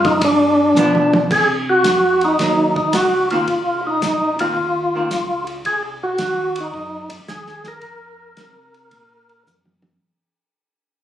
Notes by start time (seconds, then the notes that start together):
Already playing: F#2
0.05 D#4, kick, ride
0.21 G2 D4, kick, ride
0.75 B2 F3 B3, hi-hat pedal, high tom
0.80 D4
0.95 high tom
1.13 high tom
1.31 C3 G#4, kick, crash
1.69 F#4
1.84 F2, kick, snare, hi-hat pedal, ride
2.21 D#4, ride
2.39 D#2 F#3 A#3 D#4, kick, snare, ride
2.76 D#4, kick
2.93 C#2 F#4, kick, snare, hi-hat pedal, ride
3.30 D#3 A#3 C4 F4, ride
3.48 C2, kick, ride
3.87 D#4
4.02 A#1, kick, snare, hi-hat pedal, ride
4.39 D#3 A#3 C4 F4, ride
4.56 D#2, kick
4.95 D#3 A#3 C4
5.11 C#2, kick, snare, hi-hat pedal, ride
5.47 ride
5.65 C2 G#4, kick, ride
6.03 F#4
6.18 D#2, kick, snare, hi-hat pedal, ride
6.56 ride
6.60 D#4
6.73 F#2, kick
7.10 F#2, ride
7.28 D#2 G#4, kick, snare, hi-hat pedal
7.47 snare
7.64 A#4, snare, ride
7.81 F2, kick, ride
8.37 C3, kick, snare, hi-hat pedal, ride
8.74 ride
8.91 A#2, kick, ride
9.29 ride
9.46 F#2, hi-hat pedal, high tom
9.65 high tom
9.82 high tom